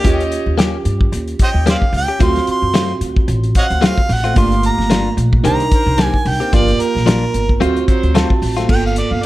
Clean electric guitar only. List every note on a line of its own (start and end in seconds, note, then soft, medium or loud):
0.04 0.22 A#3 medium
0.04 0.22 C#4 medium
0.04 0.22 G4 loud
0.58 0.76 A#3 medium
0.58 0.76 C#4 medium
0.58 0.76 G4 loud
1.66 1.84 A#3 medium
1.66 1.84 C#4 medium
1.66 1.85 G4 medium
2.08 2.20 C#4 soft
2.08 2.21 G4 medium
2.20 2.38 F#3 medium
2.20 2.38 A3 medium
2.20 2.38 C4 medium
2.20 2.38 F4 medium
2.74 2.92 F#3 medium
2.74 2.92 A3 medium
2.74 2.92 C4 medium
2.74 2.93 F4 medium
3.81 3.99 F#3 medium
3.81 4.00 A3 medium
3.81 4.00 C4 medium
3.81 4.00 F4 medium
4.24 4.36 A3 soft
4.24 4.37 C4 medium
4.24 4.36 F4 medium
4.36 4.54 A#3 medium
4.36 4.54 D4 medium
4.36 4.55 F4 medium
4.90 5.08 A#3 medium
4.90 5.08 D4 medium
4.90 5.08 F4 loud
5.44 5.62 D#3 medium
5.44 5.62 A#3 medium
5.44 5.62 C4 medium
5.44 5.62 G4 medium
5.98 6.16 D#3 medium
5.98 6.16 A#3 medium
5.98 6.16 C4 medium
5.98 6.17 G4 medium
6.40 6.52 A#3 soft
6.40 6.53 C4 medium
6.40 6.52 G4 medium
6.53 6.70 F3 medium
6.53 6.70 A#3 medium
6.53 6.71 D4 medium
6.53 6.71 F4 medium
7.06 7.24 F3 medium
7.06 7.24 A#3 medium
7.06 7.24 D4 medium
7.06 7.24 F4 medium
7.60 7.78 F#3 medium
7.60 7.78 A3 medium
7.60 7.78 C4 loud
7.60 7.78 F4 loud
8.15 8.32 F#3 medium
8.15 8.32 A3 medium
8.15 8.33 C4 medium
8.15 8.33 F4 medium
8.57 8.70 A3 soft
8.57 8.69 C4 medium
8.57 8.69 F4 medium